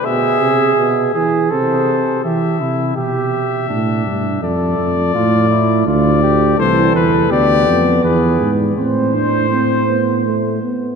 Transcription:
<<
  \new Staff \with { instrumentName = "Trumpet" } { \time 3/4 \key d \minor \tempo 4 = 82 e''4. r8 c''4 | e''4 e''2 | d''2 d''4 | \key a \minor c''8 b'8 d''4 b'8 r8 |
c''2~ c''8 r8 | }
  \new Staff \with { instrumentName = "Flugelhorn" } { \time 3/4 \key d \minor gis'4. gis'8 a'4 | g'8 e'8 g'4 d'4 | a'4 f'8 e'8 f'8 g'8 | \key a \minor a'4 g'4 gis'8 r8 |
c''2~ c''8 r8 | }
  \new Staff \with { instrumentName = "Euphonium" } { \time 3/4 \key d \minor b,8 c8 b,8 e8 c4 | r2. | r2. | \key a \minor e4 b2 |
c'8 d'8 c'8 b8 a8 b8 | }
  \new Staff \with { instrumentName = "Tuba" } { \clef bass \time 3/4 \key d \minor r2. | e8 c8 b,4 a,8 g,8 | f,8 f,8 a,4 d,4 | \key a \minor c,8 e,8 d,8 f,8 e,8 gis,8 |
a,2~ a,8 r8 | }
>>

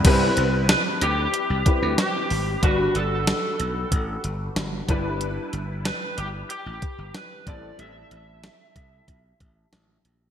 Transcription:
<<
  \new Staff \with { instrumentName = "Lead electric guitar" } { \time 4/4 \key c \lydian \tempo 4 = 93 r4 b'8 g'4. g'4 | fis'8 a'2 r4. | r4 b'8 g'8 g'4 b'8 d''8 | e''2.~ e''8 r8 | }
  \new Staff \with { instrumentName = "Grand piano" } { \time 4/4 \key c \lydian <g c' e' b'>2~ <g c' e' b'>8 <g c' e' b'>4. | <g d' fis' b'>2.~ <g d' fis' b'>8 <g d' e' b'>8~ | <g d' e' b'>2.~ <g d' e' b'>8 <g c' e' a'>8~ | <g c' e' a'>2.~ <g c' e' a'>8 r8 | }
  \new Staff \with { instrumentName = "Slap bass" } { \clef bass \time 4/4 \key c \lydian c,8 c,8. r16 d,8 r16 c,16 r16 d,16 r8 gis,,8 | g,,8 g,,8. r16 b,,8 a,,8 g,,8 g,,8 g,,8~ | g,,8 g,,8. r16 g,,8 r16 a,,16 r16 g,,16 r8 a,,8 | a,,8 a,,8. r16 c,8 b,,8 a,,8 a,,8 ais,,8 | }
  \new DrumStaff \with { instrumentName = "Drums" } \drummode { \time 4/4 <cymc hh bd>8 hh8 <hh sn>8 hh8 hh8 <hh bd>8 <hh sn>8 hho8 | <hh bd>8 hh8 <hh sn>8 hh8 <hh bd>8 hh8 <hh sn>8 <hh bd>8 | hh8 hh8 <hh sn>8 hh8 hh8 <hh bd>8 <hh sn>8 <hh bd>8 | hh8 hh8 <hh sn>8 <hh bd>8 <hh bd>8 <hh bd>8 <hh sn>8 hh8 | }
>>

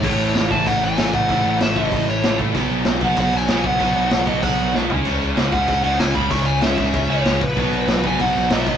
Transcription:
<<
  \new Staff \with { instrumentName = "Lead electric guitar" } { \time 4/4 \key a \lydian \tempo 4 = 191 cis''4. a''8 fis''8 gis''4 fis''8~ | fis''4 e''8 dis''4 cis''4 r8 | r4. fis''8 fis''8 gis''4 fis''8~ | fis''4. dis''8 fis''4 r4 |
r4. fis''4 fis''8 gis''8 b''8 | cis'''8 gis''8 e''4. cis''4 b'8~ | b'4. gis''8 fis''4 dis''16 e''16 dis''8 | }
  \new Staff \with { instrumentName = "Distorted electric guitar" } { \clef bass \time 4/4 \key a \lydian <a, e a>2.~ <a, e a>8 <a, e a>8 | <a, e a>2.~ <a, e a>8 <a, e a>8 | <b, fis b>2.~ <b, fis b>8 <b, fis b>8 | <b, fis b>2.~ <b, fis b>8 <cis gis cis'>8~ |
<cis gis cis'>2. <cis gis cis'>8 <cis gis cis'>8~ | <cis gis cis'>2. <cis gis cis'>8 r8 | <b, fis b>2.~ <b, fis b>8 <b, fis b>8 | }
  \new Staff \with { instrumentName = "Distorted electric guitar" } { \clef bass \time 4/4 \key a \lydian <a, e a>4. <a, e a>4. <a, e a>4 | <a, e a>4. <a, e a>4. <a, e a>4 | <b, fis b>4. <b, fis b>4. <b, fis b>4 | <b, fis b>4. <b, fis b>4. <b, fis b>8 <cis gis cis'>8~ |
<cis gis cis'>4 <cis gis cis'>4. <cis gis cis'>4 <cis gis cis'>8~ | <cis gis cis'>4 <cis gis cis'>4. <cis gis cis'>4 r8 | <b, fis b>4. <b, fis b>4. <b, fis b>4 | }
  \new Staff \with { instrumentName = "Overdriven electric guitar" } { \clef bass \time 4/4 \key a \lydian <a, e a>4. <a, e a>4. <a, e a>4 | <a, e a>4. <a, e a>4. <a, e a>4 | <b, fis b>4. <b, fis b>4. <b, fis b>4 | <b, fis b>4. <b, fis b>4. <b, fis b>8 <cis gis cis'>8~ |
<cis gis cis'>4 <cis gis cis'>4. <cis gis cis'>4 <cis gis cis'>8~ | <cis gis cis'>4 <cis gis cis'>4. <cis gis cis'>4 r8 | <b, fis b>4. <b, fis b>4. <b, fis b>4 | }
  \new Staff \with { instrumentName = "Picked electric bass" } { \clef bass \time 4/4 \key a \lydian a,,8 a,,8 a,,8 a,,8 a,,8 a,,8 a,,8 a,,8 | a,,8 a,,8 a,,8 a,,8 a,,8 a,,8 a,,8 a,,8 | b,,8 b,,8 b,,8 b,,8 b,,8 b,,8 b,,8 b,,8 | b,,8 b,,8 b,,8 b,,8 b,,8 b,,8 b,,8 cis,8 |
cis,8 cis,8 cis,8 cis,8 cis,8 cis,8 cis,8 cis,8 | cis,8 cis,8 cis,8 cis,8 cis,8 cis,8 cis,8 ais,,8 | b,,8 b,,8 b,,8 b,,8 b,,8 b,,8 b,,8 b,,8 | }
  \new DrumStaff \with { instrumentName = "Drums" } \drummode { \time 4/4 <cymc bd>8 cymc8 <cymc sn>8 <cymc bd>8 <cymc bd>8 cymc8 <cymc sn>8 <cymc bd>8 | <cymc bd>8 cymc8 <cymc sn>8 <cymc bd>8 <cymc bd>8 cymc8 <cymc sn>8 <cymc bd>8 | <cymc bd>8 cymc8 <cymc sn>8 <cymc bd>8 <cymc bd>8 cymc8 <cymc sn>8 <cymc bd>8 | <cymc bd>8 cymc8 <cymc sn>8 <cymc bd>8 <cymc bd>8 cymc8 sn8 tomfh8 |
cymc8 cymc8 <cymc sn>8 <cymc bd>8 <cymc bd>8 cymc8 <cymc sn>8 <cymc bd>8 | <cymc bd>8 cymc8 <cymc sn>8 <cymc bd>8 <cymc bd>8 cymc8 <cymc sn>8 <cymc bd>8 | <cymc bd>8 cymc8 <cymc sn>8 <cymc bd>8 <cymc bd>8 cymc8 <cymc sn>8 <cymc bd>8 | }
>>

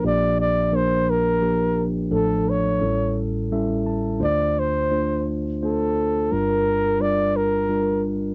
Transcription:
<<
  \new Staff \with { instrumentName = "Flugelhorn" } { \time 3/4 \key d \minor \tempo 4 = 86 d''8 d''8 c''8 bes'4 r8 | a'8 cis''4 r4. | d''8 c''4 r8 a'4 | bes'4 d''8 bes'4 r8 | }
  \new Staff \with { instrumentName = "Tine electric piano" } { \time 3/4 \key d \minor <f bes d' g'>8 r8 <f bes d' bes'>8 r8 <f bes d' g'>8 r8 | <f a d' a'>8 r8 <g cis' e' a'>8 r8 <g cis' e' a' e''>8 a''8 | <a d' f' c''>8 r8 <a d' f' c''>8 r8 <a d' f' c''>8 r8 | <g d' f' bes'>8 r8 <g d' f' bes'>8 r8 <g d' f' bes'>8 r8 | }
  \new Staff \with { instrumentName = "Tine electric piano" } { \clef bass \time 3/4 \key d \minor <bes,, bes,>2. | <a,, a,>4 <a,, a,>2 | <d, d>2. | <g,, g,>2. | }
>>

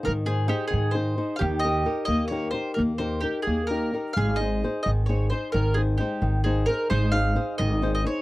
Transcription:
<<
  \new Staff \with { instrumentName = "Mandolin" } { \time 6/8 \key aes \major \tempo 4. = 88 bes'8 aes'8 g'8 aes'8 c''4 | f''8 ees''4 ees''8 des''8 c''8 | bes'8 c''8 g'8 aes'8 bes'4 | f''8 ees''4 ees''8 des''8 c''8 |
bes'8 aes'8 g'4 aes'8 bes'8 | c''8 f''4 ees''8. ees''16 des''8 | }
  \new Staff \with { instrumentName = "Nylon-string guitar" } { \time 6/8 \key aes \major <ees ees' aes' c''>8 <ees' aes' c''>8 <ees' aes' c''>8 ees8 <ees' aes' c''>8 <ees' aes' c''>8 | ees8 <ees' g' bes'>8 <ees' g' bes'>8 bes8 <ees' g' bes'>8 <ees' g' bes'>8 | bes8 <ees' g' bes'>8 <ees' g' bes'>8 bes8 <ees' g' bes'>8 <ees' g' bes'>8 | aes8 <ees' aes' c''>8 <ees' aes' c''>8 ees8 <ees' aes' c''>8 <ees' aes' c''>8 |
ees8 <ees' aes' c''>8 <aes ees' c''>8 ees8 <ees' aes' c''>8 <ees' aes' c''>8 | aes8 <ees' aes' c''>8 <ees' aes' c''>8 ees8 <ees' aes' c''>8 <ees' aes' c''>8 | }
  \new Staff \with { instrumentName = "Mandolin" } { \time 6/8 \key aes \major f'4 ees'2 | g'2.~ | g'2~ g'8 r8 | aes'2.~ |
aes'2. | ees'2. | }
  \new Staff \with { instrumentName = "Upright bass" } { \clef bass \time 6/8 \key aes \major aes,4. aes,4. | ees,4. ees,4. | ees,4. ees,4. | aes,,4. aes,,4. |
aes,,4. aes,,4. | aes,,4. aes,,4. | }
>>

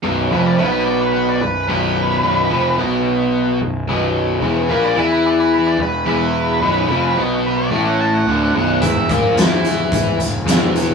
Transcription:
<<
  \new Staff \with { instrumentName = "Lead electric guitar" } { \time 4/4 \key e \major \tempo 4 = 109 r8 b'16 d''16 b'16 b'16 d''16 b'16 b'16 d''16 b'8 b'4~ | b'4 r2. | r8 b'16 d''16 b'16 b'16 d''16 b'16 b'16 d''16 b'8 b'4~ | b'4 r8 b'16 d''8 fis''16 a''16 fis''4~ fis''16 |
e''8 r2. r8 | }
  \new Staff \with { instrumentName = "Overdriven electric guitar" } { \clef bass \time 4/4 \key e \major <b,, b,>8 <f, f>8 <b, b>4. b,,8 <b,, b,>4 | <b,, b,>8 <f, f>8 <b, b>4. b,,8 <b,, b,>4 | <e, e>8 <ais, ais>8 <e e'>4. e,8 <e, e>4 | <b,, b,>8 <eis, eis>8 <b, b>4 <a, a>4 <d, d>8 <b,, b,>8 |
<e, e>8 <ais, ais>8 <e e'>4. e,8 <e, e>4 | }
  \new Staff \with { instrumentName = "Picked electric bass" } { \clef bass \time 4/4 \key e \major b,,,8 f,,8 b,,4. b,,,8 b,,,4 | b,,,8 f,,8 b,,4. b,,,8 b,,,4 | e,,8 ais,,8 e,4. e,,8 e,,4 | b,,,8 eis,,8 b,,4 a,,4 d,,8 b,,,8 |
e,,8 ais,,8 e,4. e,,8 e,,4 | }
  \new DrumStaff \with { instrumentName = "Drums" } \drummode { \time 4/4 r4 r4 r4 r4 | r4 r4 r4 r4 | r4 r4 r4 r4 | r4 r4 r4 r4 |
<hh bd>8 <hh bd>8 <hh sn>8 hh8 <hh bd>8 hh8 <hh sn>8 hh8 | }
>>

